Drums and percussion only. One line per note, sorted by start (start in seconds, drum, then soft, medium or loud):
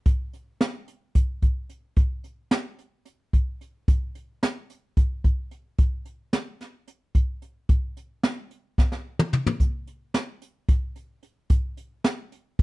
0.06 kick loud
0.06 closed hi-hat medium
0.33 closed hi-hat medium
0.61 snare medium
0.61 closed hi-hat medium
0.88 closed hi-hat medium
1.15 kick medium
1.15 closed hi-hat medium
1.42 kick medium
1.42 closed hi-hat medium
1.69 closed hi-hat medium
1.97 kick loud
1.97 closed hi-hat medium
2.24 closed hi-hat medium
2.51 snare loud
2.51 closed hi-hat medium
2.79 closed hi-hat medium
3.05 closed hi-hat medium
3.33 kick medium
3.33 closed hi-hat medium
3.61 closed hi-hat soft
3.88 kick loud
3.88 closed hi-hat medium
4.15 closed hi-hat medium
4.43 snare loud
4.43 closed hi-hat medium
4.70 closed hi-hat medium
4.97 kick medium
4.97 closed hi-hat medium
5.24 kick medium
5.24 closed hi-hat medium
5.51 closed hi-hat medium
5.78 kick loud
5.78 closed hi-hat medium
6.05 closed hi-hat medium
6.33 snare loud
6.33 closed hi-hat medium
6.61 snare soft
6.61 closed hi-hat medium
6.88 closed hi-hat medium
7.15 kick medium
7.15 closed hi-hat medium
7.42 closed hi-hat soft
7.69 kick loud
7.69 closed hi-hat medium
7.97 closed hi-hat medium
8.23 snare loud
8.23 closed hi-hat medium
8.51 closed hi-hat medium
8.78 kick medium
8.78 snare soft
8.92 snare medium
9.19 mid tom medium
9.33 mid tom medium
9.47 floor tom medium
9.60 kick medium
9.60 closed hi-hat medium
9.87 closed hi-hat medium
10.14 snare loud
10.14 closed hi-hat medium
10.42 closed hi-hat medium
10.69 kick loud
10.69 closed hi-hat medium
10.96 closed hi-hat medium
11.23 closed hi-hat medium
11.50 kick loud
11.50 closed hi-hat medium
11.77 closed hi-hat medium
12.04 snare loud
12.04 closed hi-hat medium
12.32 closed hi-hat medium
12.59 kick loud
12.59 closed hi-hat medium